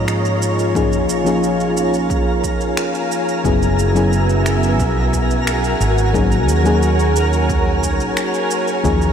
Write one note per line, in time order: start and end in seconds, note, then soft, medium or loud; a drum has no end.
0.00 1.09 G#2 medium
0.00 0.75 F3 medium
0.00 0.75 A#3 medium
0.00 0.76 C#4 medium
0.00 0.76 D#4 medium
0.00 3.41 F4 medium
0.00 0.76 G#4 loud
0.00 9.13 A#4 medium
0.00 3.41 C#5 medium
0.00 0.73 D#5 medium
0.00 9.13 G#5 medium
0.00 9.13 A#5 medium
0.08 finger snap medium
0.08 shaker soft
0.25 shaker soft
0.42 shaker medium
0.59 shaker soft
0.75 1.22 F3 medium
0.75 1.22 A#3 medium
0.75 1.22 C#4 medium
0.75 1.22 D#4 medium
0.75 1.22 G#4 medium
0.75 3.42 F5 medium
0.75 kick loud
0.75 shaker soft
0.93 shaker soft
1.09 2.70 A#1 medium
1.09 shaker medium
1.24 3.40 F3 medium
1.24 3.40 A#3 medium
1.24 3.41 C#4 medium
1.24 3.41 D#4 medium
1.24 3.42 G#4 loud
1.24 shaker soft
1.44 shaker soft
1.60 shaker soft
1.77 shaker medium
1.94 shaker soft
2.10 kick loud
2.10 shaker soft
2.44 kick medium
2.44 shaker medium
2.61 shaker soft
2.77 finger snap medium
2.77 shaker soft
2.95 shaker soft
3.12 shaker medium
3.29 shaker soft
3.44 4.80 F#1 medium
3.44 3.91 F#3 medium
3.44 3.91 B3 medium
3.44 5.79 B3 medium
3.44 3.92 C#4 medium
3.44 3.92 E4 medium
3.44 8.80 F#4 medium
3.44 3.92 G#4 loud
3.44 5.79 E5 medium
3.44 kick loud
3.44 shaker soft
3.62 shaker soft
3.79 shaker medium
3.94 5.78 F#3 medium
3.94 5.79 B3 medium
3.94 5.79 C#4 medium
3.94 5.79 E4 medium
3.94 5.80 G#4 loud
3.94 shaker soft
4.13 shaker soft
4.29 shaker soft
4.46 finger snap medium
4.46 shaker medium
4.63 shaker soft
4.80 5.73 B1 medium
4.80 kick loud
4.80 shaker soft
5.13 kick medium
5.13 shaker medium
5.31 shaker soft
5.47 finger snap medium
5.47 shaker soft
5.64 shaker soft
5.80 6.48 G#1 medium
5.80 8.81 A#4 medium
5.80 9.13 C#5 medium
5.80 shaker medium
5.98 shaker soft
6.13 6.61 F#3 medium
6.13 6.61 A#3 medium
6.13 6.61 C#4 medium
6.13 6.61 D#4 medium
6.13 6.61 G#4 medium
6.13 kick loud
6.13 shaker soft
6.32 shaker soft
6.48 8.09 D#2 medium
6.48 shaker medium
6.64 8.80 F#3 medium
6.64 8.80 A#3 medium
6.64 8.80 C#4 medium
6.64 8.81 D#4 medium
6.64 8.81 G#4 loud
6.64 shaker soft
6.82 shaker soft
7.00 shaker soft
7.16 shaker medium
7.33 shaker soft
7.49 kick loud
7.49 shaker soft
7.83 kick medium
7.83 shaker medium
8.00 shaker soft
8.17 finger snap medium
8.17 shaker soft
8.34 shaker soft
8.51 shaker medium
8.68 shaker soft
8.83 9.13 D#2 medium
8.83 9.13 F3 medium
8.83 9.13 A#3 medium
8.83 9.13 C#4 medium
8.83 9.13 D#4 medium
8.83 9.13 F4 medium
8.83 9.13 G#4 loud
8.83 9.13 D#5 medium
8.83 kick loud
8.83 shaker soft
9.02 shaker soft